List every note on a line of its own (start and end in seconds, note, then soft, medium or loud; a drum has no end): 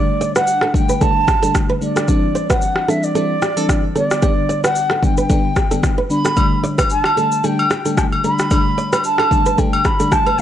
0.00 0.68 D3 medium
0.00 0.68 G3 medium
0.00 0.68 A3 medium
0.00 0.68 D4 medium
0.00 0.32 D5 medium
0.21 0.31 D5 medium
0.21 shaker medium
0.36 0.44 B4 medium
0.36 0.72 F#5 medium
0.36 cross-stick medium
0.36 shaker medium
0.47 shaker medium
0.61 0.71 A4 medium
0.61 cross-stick medium
0.74 0.99 D3 medium
0.74 0.99 G3 medium
0.74 0.99 A3 medium
0.74 0.99 D4 medium
0.74 1.03 G5 loud
0.74 kick medium
0.74 shaker medium
0.89 0.98 B4 medium
0.89 shaker medium
1.01 1.20 D3 medium
1.01 1.20 G3 medium
1.01 1.20 A3 medium
1.01 1.20 D4 loud
1.01 1.12 A4 medium
1.01 1.55 A5 loud
1.01 kick medium
1.01 shaker medium
1.28 1.38 G4 medium
1.28 kick medium
1.28 cross-stick medium
1.28 shaker soft
1.42 1.78 D3 medium
1.42 1.78 G3 medium
1.42 1.78 A3 medium
1.42 1.79 D4 medium
1.42 1.51 A4 medium
1.42 shaker medium
1.55 kick medium
1.55 cross-stick medium
1.55 shaker medium
1.69 1.78 B4 medium
1.81 2.06 D3 medium
1.81 2.06 G3 medium
1.81 2.06 A3 medium
1.81 2.06 D4 medium
1.81 2.52 D5 medium
1.81 shaker soft
1.96 2.05 A4 medium
1.96 cross-stick medium
1.96 shaker medium
2.08 2.83 E3 medium
2.08 2.83 G3 medium
2.08 2.83 C4 medium
2.08 2.83 D4 loud
2.08 kick loud
2.08 shaker medium
2.35 2.45 C5 medium
2.35 shaker medium
2.50 2.58 B4 medium
2.50 2.90 F#5 medium
2.50 kick medium
2.50 cross-stick medium
2.50 shaker medium
2.62 shaker medium
2.76 cross-stick medium
2.88 3.13 E3 medium
2.88 3.13 G3 medium
2.88 3.13 C4 medium
2.88 3.14 D4 medium
2.88 2.99 A4 medium
2.88 3.05 E5 medium
2.88 shaker medium
3.03 3.84 D5 medium
3.03 shaker medium
3.15 3.34 E3 medium
3.15 3.34 G3 medium
3.15 3.34 C4 medium
3.15 3.34 D4 loud
3.15 3.26 A4 medium
3.15 shaker medium
3.42 3.57 G4 medium
3.42 cross-stick medium
3.42 shaker soft
3.56 3.93 E3 medium
3.56 3.93 G3 medium
3.56 3.93 C4 medium
3.56 3.93 D4 medium
3.56 3.65 A4 medium
3.56 shaker medium
3.69 kick medium
3.69 cross-stick medium
3.69 shaker medium
3.95 4.20 D3 medium
3.95 4.21 G3 medium
3.95 4.21 B3 medium
3.95 4.21 D4 medium
3.95 4.06 A4 medium
3.95 4.60 D5 medium
3.95 shaker soft
4.11 cross-stick medium
4.11 shaker medium
4.22 4.97 D3 medium
4.22 4.97 G3 medium
4.22 4.97 B3 medium
4.22 4.97 D4 medium
4.22 4.33 G4 medium
4.22 kick loud
4.22 shaker medium
4.49 4.60 D5 medium
4.49 shaker medium
4.64 4.72 B4 medium
4.64 5.05 F#5 medium
4.64 cross-stick medium
4.64 shaker medium
4.75 shaker medium
4.90 4.99 A4 medium
4.90 cross-stick medium
5.03 5.28 D3 medium
5.03 5.28 G3 medium
5.03 5.28 B3 medium
5.03 5.28 D4 medium
5.03 5.18 G5 loud
5.03 kick medium
5.03 shaker medium
5.17 5.26 B4 medium
5.17 5.94 G5 loud
5.17 shaker medium
5.30 5.49 D3 medium
5.30 5.49 G3 medium
5.30 5.49 B3 medium
5.30 5.49 D4 loud
5.30 5.40 A4 medium
5.30 kick medium
5.30 shaker medium
5.56 5.67 G4 medium
5.56 kick medium
5.56 cross-stick medium
5.56 shaker soft
5.71 5.88 D3 medium
5.71 5.89 G3 medium
5.71 5.89 B3 medium
5.71 5.89 D4 medium
5.71 5.80 A4 medium
5.71 shaker medium
5.83 kick medium
5.83 cross-stick medium
5.83 shaker medium
5.98 6.06 B4 medium
6.10 6.29 D3 medium
6.10 6.29 G3 medium
6.10 6.29 B3 medium
6.10 6.29 D4 medium
6.10 6.60 B5 loud
6.10 shaker soft
6.25 6.33 A4 medium
6.25 cross-stick medium
6.25 shaker medium
6.36 7.11 D3 medium
6.36 7.11 G3 medium
6.36 7.11 A3 medium
6.36 7.11 D4 medium
6.36 kick loud
6.36 high agogo medium
6.36 shaker medium
6.64 6.74 D5 medium
6.64 shaker medium
6.78 6.87 B4 medium
6.78 kick medium
6.78 cross-stick medium
6.78 high agogo medium
6.78 shaker medium
6.90 7.46 A5 loud
6.90 shaker medium
7.04 cross-stick medium
7.04 high agogo medium
7.17 7.42 D3 medium
7.17 7.42 G3 medium
7.17 7.42 A3 medium
7.17 7.42 D4 medium
7.17 7.28 A4 medium
7.17 shaker medium
7.32 shaker medium
7.43 7.63 D3 medium
7.43 7.63 G3 medium
7.43 7.63 A3 medium
7.43 7.63 D4 loud
7.43 7.54 A4 medium
7.43 7.97 G5 loud
7.43 shaker medium
7.59 high agogo medium
7.70 7.81 G4 medium
7.70 cross-stick medium
7.70 shaker soft
7.85 8.21 D3 medium
7.85 8.21 G3 medium
7.85 8.21 A3 medium
7.85 8.21 D4 medium
7.85 7.94 A4 medium
7.85 shaker medium
7.97 8.04 G5 medium
7.97 kick medium
7.97 cross-stick medium
7.97 low woodblock medium
7.97 shaker medium
8.12 high agogo medium
8.24 8.49 D3 medium
8.24 8.49 G3 medium
8.24 8.49 A3 medium
8.24 8.49 D4 medium
8.24 8.35 A4 medium
8.24 9.01 B5 loud
8.24 shaker soft
8.39 cross-stick medium
8.39 shaker medium
8.51 9.25 D3 medium
8.51 9.26 G3 medium
8.51 9.26 A3 medium
8.51 9.26 D4 medium
8.51 8.61 G4 medium
8.51 kick loud
8.51 high agogo medium
8.51 shaker medium
8.78 8.88 D5 medium
8.78 shaker medium
8.93 9.01 B4 medium
8.93 cross-stick medium
8.93 high agogo medium
8.93 shaker medium
9.04 9.60 A5 loud
9.04 shaker medium
9.18 9.28 A4 medium
9.18 cross-stick medium
9.18 high agogo medium
9.31 9.56 D3 medium
9.31 9.56 G3 medium
9.31 9.56 A3 medium
9.31 9.56 D4 medium
9.31 kick medium
9.31 shaker medium
9.46 9.55 B4 medium
9.46 shaker medium
9.58 9.77 D3 medium
9.58 9.77 G3 medium
9.58 9.77 A3 medium
9.58 9.77 D4 loud
9.58 9.69 A4 medium
9.58 9.87 G5 medium
9.58 kick medium
9.58 shaker medium
9.73 high agogo medium
9.84 9.95 G4 medium
9.84 10.14 B5 loud
9.84 kick medium
9.84 cross-stick medium
9.84 shaker soft
9.99 10.36 D3 medium
9.99 10.36 G3 medium
9.99 10.36 A3 medium
9.99 10.36 D4 medium
9.99 10.08 A4 medium
9.99 shaker medium
10.12 10.40 A5 medium
10.12 kick medium
10.12 cross-stick medium
10.12 low woodblock medium
10.12 shaker medium
10.26 10.35 B4 medium
10.26 high agogo medium
10.38 10.42 D3 medium
10.38 10.42 G3 medium
10.38 10.42 A3 medium
10.38 shaker soft